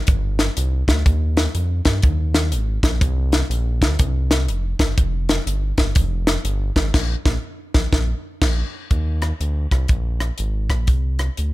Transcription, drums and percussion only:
0.07 kick, closed hi-hat
0.39 snare, closed hi-hat
0.57 closed hi-hat
0.88 kick, snare, closed hi-hat
1.06 kick, closed hi-hat
1.37 snare, closed hi-hat
1.55 closed hi-hat
1.85 kick, snare, closed hi-hat
2.02 kick, closed hi-hat
2.34 snare, closed hi-hat
2.52 closed hi-hat
2.83 kick, snare, closed hi-hat
3.01 kick, closed hi-hat
3.32 snare, closed hi-hat
3.51 closed hi-hat
3.82 kick, snare, closed hi-hat
3.99 kick, closed hi-hat
4.31 snare, closed hi-hat
4.49 closed hi-hat
4.79 kick, snare, closed hi-hat
4.98 kick, closed hi-hat
5.29 snare, closed hi-hat
5.47 closed hi-hat
5.78 kick, snare, closed hi-hat
5.95 kick, closed hi-hat
6.27 snare, closed hi-hat
6.45 closed hi-hat
6.76 kick, snare, closed hi-hat
6.94 kick, snare, crash
7.26 kick, snare
7.74 kick, snare
7.93 kick, snare
8.42 kick, snare, crash
8.91 kick, closed hi-hat
9.22 cross-stick, closed hi-hat
9.41 closed hi-hat
9.71 kick, cross-stick, closed hi-hat
9.88 kick, closed hi-hat
10.20 cross-stick, closed hi-hat
10.38 closed hi-hat
10.70 kick, cross-stick, closed hi-hat
10.87 kick, closed hi-hat
11.19 cross-stick, closed hi-hat
11.37 closed hi-hat

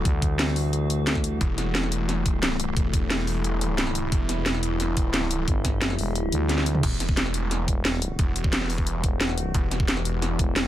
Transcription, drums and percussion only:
0.05 kick, closed hi-hat
0.22 kick, closed hi-hat
0.39 snare, closed hi-hat
0.56 open hi-hat
0.73 closed hi-hat
0.90 closed hi-hat
1.07 snare, closed hi-hat
1.15 kick, snare
1.24 closed hi-hat
1.41 kick, closed hi-hat
1.58 snare, closed hi-hat
1.75 snare, closed hi-hat
1.83 snare
1.92 closed hi-hat
2.09 snare, closed hi-hat
2.26 kick, closed hi-hat
2.43 snare, closed hi-hat
2.60 closed hi-hat
2.77 kick, closed hi-hat
2.94 kick, closed hi-hat
3.10 snare, closed hi-hat
3.27 open hi-hat
3.44 closed hi-hat
3.61 closed hi-hat
3.78 snare, closed hi-hat
3.87 snare
3.95 closed hi-hat
4.12 kick, closed hi-hat
4.29 snare, closed hi-hat
4.46 snare, closed hi-hat
4.54 snare
4.63 closed hi-hat
4.80 snare, closed hi-hat
4.97 kick, closed hi-hat
5.14 snare, closed hi-hat
5.31 closed hi-hat
5.48 kick, closed hi-hat
5.65 kick, snare, closed hi-hat
5.82 snare, closed hi-hat
5.90 snare
5.99 open hi-hat
6.15 closed hi-hat
6.32 closed hi-hat
6.49 snare, closed hi-hat
6.58 snare
6.66 closed hi-hat
6.75 mid tom
6.83 kick, closed hi-hat, crash
7.00 snare, closed hi-hat
7.09 kick
7.17 snare, closed hi-hat
7.26 snare
7.34 closed hi-hat
7.51 snare, closed hi-hat
7.68 kick, closed hi-hat
7.85 snare, closed hi-hat
8.02 closed hi-hat
8.19 kick, closed hi-hat
8.36 closed hi-hat
8.44 kick
8.53 snare, closed hi-hat
8.61 snare
8.70 open hi-hat
8.78 kick
8.87 closed hi-hat
9.04 kick, closed hi-hat
9.21 snare, closed hi-hat
9.29 snare
9.38 closed hi-hat
9.54 kick, closed hi-hat
9.71 snare, closed hi-hat
9.80 kick
9.88 snare, closed hi-hat
9.97 snare
10.05 closed hi-hat
10.22 snare, closed hi-hat
10.39 kick, closed hi-hat
10.56 snare, closed hi-hat

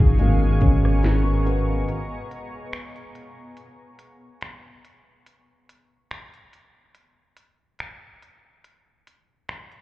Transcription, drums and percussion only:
0.00 kick
0.19 closed hi-hat
0.61 kick, closed hi-hat
0.85 cross-stick
1.03 snare, closed hi-hat
1.47 closed hi-hat
1.89 closed hi-hat
2.31 closed hi-hat
2.73 finger snap, closed hi-hat
2.96 closed hi-hat
3.15 closed hi-hat
3.57 closed hi-hat
3.99 closed hi-hat
4.41 finger snap, closed hi-hat
4.85 closed hi-hat
5.26 closed hi-hat
5.69 closed hi-hat
6.11 finger snap, closed hi-hat
6.34 closed hi-hat
6.53 closed hi-hat
6.95 closed hi-hat
7.37 closed hi-hat
7.79 finger snap, closed hi-hat
8.22 closed hi-hat
8.64 closed hi-hat
9.07 closed hi-hat
9.49 finger snap, closed hi-hat
9.72 closed hi-hat

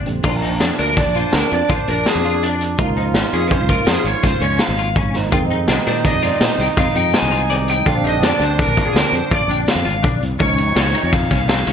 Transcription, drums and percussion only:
0.06 closed hi-hat
0.23 kick, crash, shaker
0.42 closed hi-hat, shaker
0.60 snare, closed hi-hat, shaker
0.78 closed hi-hat
0.97 kick, snare, closed hi-hat
1.14 closed hi-hat, shaker
1.32 snare, closed hi-hat, shaker
1.51 closed hi-hat
1.69 kick, closed hi-hat, shaker
1.88 closed hi-hat
2.06 snare, closed hi-hat, shaker
2.24 closed hi-hat, shaker
2.42 closed hi-hat, shaker
2.59 closed hi-hat, shaker
2.78 kick, closed hi-hat, shaker
2.96 closed hi-hat, shaker
3.14 snare, closed hi-hat, shaker
3.33 closed hi-hat
3.50 kick, closed hi-hat
3.69 kick, closed hi-hat, shaker
3.87 snare, closed hi-hat, shaker
4.06 closed hi-hat
4.23 kick, snare, closed hi-hat, shaker
4.41 closed hi-hat
4.59 snare, closed hi-hat, shaker
4.77 closed hi-hat, shaker
4.96 kick, closed hi-hat, shaker
5.14 snare, closed hi-hat, shaker
5.32 kick, closed hi-hat, shaker
5.50 closed hi-hat, shaker
5.68 snare, closed hi-hat, shaker
5.86 snare, closed hi-hat
6.04 kick, snare, closed hi-hat
6.22 snare, closed hi-hat, shaker
6.41 snare, closed hi-hat, shaker
6.60 snare, closed hi-hat
6.77 kick, snare, closed hi-hat, shaker
6.95 closed hi-hat
7.13 snare, closed hi-hat, shaker
7.32 closed hi-hat, shaker
7.50 closed hi-hat, shaker
7.67 closed hi-hat, shaker
7.85 kick, closed hi-hat, shaker
8.05 closed hi-hat
8.23 snare, closed hi-hat
8.42 closed hi-hat
8.59 kick, snare, closed hi-hat
8.76 kick, closed hi-hat, shaker
8.96 snare, closed hi-hat
9.13 closed hi-hat, shaker
9.31 kick, closed hi-hat, shaker
9.49 closed hi-hat, shaker
9.67 snare, closed hi-hat, shaker
9.85 closed hi-hat, shaker
10.04 kick, closed hi-hat
10.21 closed hi-hat, shaker
10.39 kick, ride, shaker
10.58 ride, shaker
10.76 snare, ride, shaker
10.95 ride
11.13 kick, snare, ride
11.31 kick, snare, ride, shaker
11.49 snare, ride, shaker
11.66 snare, ride, shaker

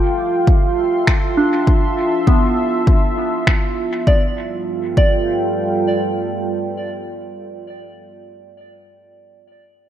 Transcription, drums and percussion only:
0.47 kick
1.07 finger snap, kick
1.67 kick
2.27 kick
2.87 kick
3.47 finger snap, kick
4.07 kick
4.97 kick

